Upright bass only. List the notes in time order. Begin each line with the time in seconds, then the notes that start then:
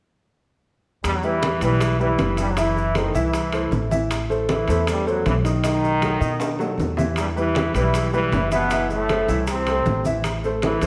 1.04 E2
1.61 B1
2.18 F#1
3.14 C2
3.71 A1
4.68 E2
5.25 B1
6.21 B2
6.77 E2
7.74 B1
8.32 F#1
9.28 C2
9.85 A1
10.82 E2